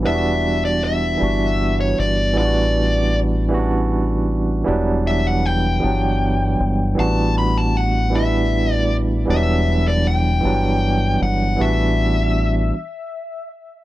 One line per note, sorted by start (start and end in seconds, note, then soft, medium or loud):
0.03 1.17 E1 loud
0.03 1.12 E3 medium
0.03 1.13 G3 medium
0.03 1.14 B3 medium
0.03 0.64 E5 loud
0.07 1.14 D4 medium
0.07 0.13 E4 medium
0.15 1.18 F#4 medium
0.65 0.81 D5 medium
0.84 1.80 E5 loud
1.18 2.27 E3 medium
1.18 2.28 G3 medium
1.18 2.29 B3 medium
1.22 1.94 G1 medium
1.22 2.30 D4 medium
1.22 2.30 F#4 medium
1.80 1.97 C#5 medium
1.99 2.37 G1 medium
1.99 2.37 D5 medium
2.34 4.63 A1 medium
2.34 3.43 E3 medium
2.34 3.44 G3 medium
2.34 3.44 B3 medium
2.38 3.45 D4 medium
2.38 2.44 F4 medium
2.38 3.19 D5 medium
2.45 3.49 F#4 medium
3.48 4.58 E3 medium
3.48 4.59 G3 medium
3.48 4.59 B3 medium
3.53 3.58 C#4 medium
3.53 4.61 F#4 loud
3.59 4.64 D4 medium
4.64 5.74 E3 medium
4.64 5.74 G3 medium
4.64 5.75 B3 medium
4.68 5.78 E1 loud
4.68 5.76 F#3 loud
4.68 5.76 D4 medium
5.07 5.26 E5 medium
5.27 5.46 F#5 medium
5.46 6.98 G5 loud
5.80 6.55 G1 medium
5.80 6.89 E3 medium
5.80 6.90 G3 medium
5.80 6.91 B3 medium
5.80 6.91 D4 medium
5.85 6.92 F#3 medium
6.60 6.94 G1 medium
6.95 9.24 A1 loud
6.95 8.04 E3 medium
6.95 8.05 G3 medium
6.95 8.06 B3 medium
6.95 7.04 C#4 medium
7.00 8.07 F#4 medium
7.00 7.34 A5 loud
7.05 8.10 D4 medium
7.38 7.56 B5 loud
7.58 7.77 A5 medium
7.77 8.15 F#5 medium
8.10 9.20 E3 medium
8.10 9.20 G3 medium
8.10 9.21 B3 medium
8.14 9.22 D4 medium
8.14 9.22 E4 medium
8.14 8.73 E5 medium
8.73 8.96 D5 medium
9.26 10.40 E1 loud
9.26 10.35 E3 medium
9.26 10.36 G3 medium
9.26 10.36 B3 medium
9.26 10.37 D4 medium
9.30 10.38 F#3 medium
9.30 9.87 E5 medium
9.88 10.06 D5 medium
10.07 11.22 G5 loud
10.41 11.16 G1 medium
10.41 11.50 E3 medium
10.41 11.51 G3 medium
10.41 11.52 B3 medium
10.45 11.53 F#3 medium
10.45 11.53 D4 medium
11.22 11.55 G1 loud
11.22 11.61 F#5 medium
11.56 12.70 A1 loud
11.56 12.66 E3 medium
11.56 12.66 G3 medium
11.56 12.67 B3 medium
11.60 12.68 D4 medium
11.60 12.68 F#4 medium
11.60 13.48 E5 medium